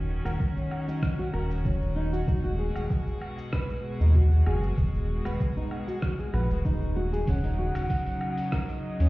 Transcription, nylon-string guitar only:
0.25 0.39 A#4 medium
0.57 0.71 C#4 medium
0.88 1.17 D#4 medium
1.19 1.32 F#4 medium
1.33 1.49 A#4 medium
1.65 1.95 C#4 medium
1.96 2.12 D#4 medium
2.13 2.26 F#4 medium
2.28 2.43 D#4 medium
2.44 2.57 F#4 medium
2.59 3.20 G#4 medium
3.53 3.68 B4 medium
4.00 4.14 D#4 medium
4.15 4.45 F#4 medium
4.47 4.62 G#4 medium
5.25 5.39 B4 medium
5.57 5.71 D#4 medium
5.88 6.17 F#4 medium
6.19 6.32 G#4 medium
6.34 6.49 B4 medium
6.65 6.95 D#4 medium
6.96 7.12 F#4 medium
7.13 7.26 G#4 medium
7.28 7.43 C#4 medium
7.44 7.57 D#4 medium
7.58 8.20 F#4 medium
8.52 8.68 A#4 medium
9.00 9.09 C#4 medium

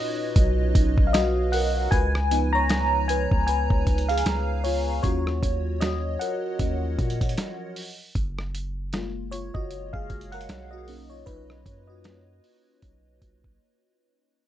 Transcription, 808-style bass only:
0.36 0.73 B1 loud
0.75 1.88 B1 loud
1.92 3.27 C#2 loud
3.32 3.69 C#2 loud
3.70 4.23 C#2 loud
4.26 5.01 C#2 loud
5.04 5.41 D#2 loud
5.43 6.17 D#2 loud
6.60 6.97 D#2 loud
6.99 7.36 A#2 loud
8.15 9.51 F#1 loud
9.55 9.92 F#1 loud
9.94 10.47 F#1 loud
10.49 11.24 B1 loud
11.27 11.64 B1 loud
11.66 12.41 F#2 loud
12.83 13.20 B1 loud
13.22 13.59 B1 loud

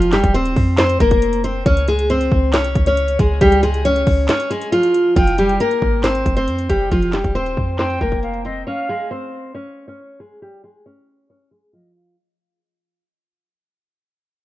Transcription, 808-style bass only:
0.00 0.22 F1 loud
0.24 0.55 D#1 loud
0.56 0.99 F2 loud
1.00 1.63 F1 loud
1.66 2.29 C#2 loud
2.32 2.55 C#2 loud
2.54 2.74 C2 medium
2.75 3.17 C#2 loud
3.19 3.40 C#2 loud
3.41 4.04 C#2 loud
4.07 4.28 C#2 loud
5.16 5.58 F1 loud
5.82 6.24 G#1 loud
6.26 6.49 F1 loud
6.48 6.68 F2 loud
6.70 6.91 F1 loud
6.92 7.23 F1 loud
7.24 7.56 D#1 loud
7.57 7.99 F2 loud
8.01 8.64 F1 loud

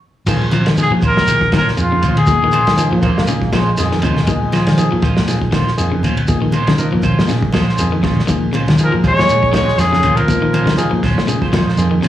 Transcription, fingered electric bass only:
0.26 0.61 A#2 loud
0.66 0.88 D#3 medium
0.90 1.00 A#2 medium
1.16 1.47 A#2 medium
1.52 1.65 A#2 medium
1.79 2.00 F2 medium
2.03 2.15 A#2 medium
2.18 muted fingered electric bass stroke soft
2.28 2.62 A#2 loud
2.67 2.89 D#3 medium
2.92 3.01 A#2 medium
3.18 3.49 A#2 medium
3.53 3.65 A#2 medium
3.79 4.00 F2 loud
4.05 4.16 A#2 medium
4.19 muted fingered electric bass stroke soft
4.28 4.62 A#2 loud
4.68 4.89 D#3 medium
4.93 5.02 A#2 medium
5.18 5.49 A#2 medium
5.53 5.65 A#2 medium
5.79 6.01 F2 medium
6.03 6.15 A#2 medium
6.19 muted fingered electric bass stroke soft
6.29 6.62 A#2 loud
6.68 6.89 D#3 medium
6.94 7.03 A#2 medium
7.19 7.50 A#2 medium
7.53 7.65 A#2 medium
7.81 8.02 F2 loud
8.04 8.16 A#2 medium
8.19 muted fingered electric bass stroke soft
8.30 8.63 A#2 loud
8.70 8.90 D#3 medium
8.94 9.03 A#2 medium
9.19 9.49 A#2 medium
9.54 9.66 A#2 medium
9.78 10.00 F2 medium
10.03 10.15 A#2 medium
10.17 muted fingered electric bass stroke soft
10.28 10.62 A#2 loud
10.66 10.88 D#3 medium
10.93 11.02 A#2 medium
11.16 11.48 A#2 medium
11.53 11.65 A#2 medium
11.77 11.99 F2 medium
12.03 12.08 A#2 loud

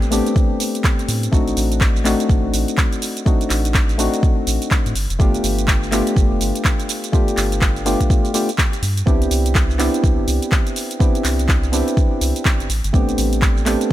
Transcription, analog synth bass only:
0.00 0.21 A1 medium
1.08 1.28 A2 loud
1.33 1.53 A1 medium
1.57 2.15 A1 loud
2.30 2.41 A1 medium
2.44 2.51 A1 loud
2.54 2.65 A1 loud
3.50 4.08 A1 loud
4.47 4.59 A1 medium
4.86 4.93 A2 loud
4.95 5.07 G1 medium
5.10 5.18 F1 loud
5.20 5.40 G1 medium
5.44 6.02 G1 loud
6.16 6.28 G1 medium
6.31 6.39 F1 loud
6.41 6.52 G1 loud
7.37 7.95 G1 medium
8.83 9.03 G2 loud
9.07 9.27 C2 medium
9.31 9.89 C2 loud
10.04 10.15 C2 medium
10.18 10.26 G1 loud
10.28 10.39 C2 medium
11.25 11.82 C2 loud
12.21 12.33 C2 medium
12.60 12.68 G1 medium
12.70 12.81 A1 medium
12.84 12.92 G1 loud
12.94 13.14 A1 medium
13.18 13.76 A1 loud

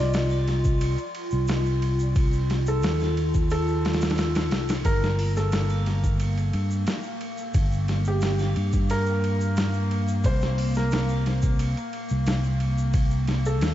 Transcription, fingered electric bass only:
0.00 0.95 C2 medium
1.33 2.84 C2 medium
2.84 4.52 D#2 medium
4.52 4.82 C2 medium
4.85 6.51 G1 medium
6.54 6.84 G2 medium
7.55 8.53 G1 loud
8.56 10.26 G2 medium
10.25 11.74 C2 medium
12.11 13.62 C2 medium
13.62 13.74 D#2 medium

